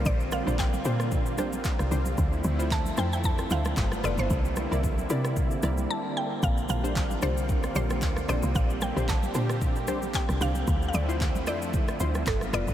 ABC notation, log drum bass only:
X:1
M:4/4
L:1/16
Q:"Swing 16ths" 1/4=113
K:Bblyd
V:1 name="Log drum bass" clef=bass
B,,,3 B,,,3 B,,4 B,,,2 z C,, C,,2 | D,,2 D,,4 F,,4 D,,2 G,,,2 F,,, G,,, | C,,3 C,,3 C,4 C,,2 z4 | B,,,2 B,,,4 C,,4 B,,,2 D,,2 B,,, C,, |
B,,,3 B,,,3 B,,4 B,,,2 z C,, C,,2 | D,,2 D,,4 F,,4 D,,2 G,,,2 F,,, G,,, |]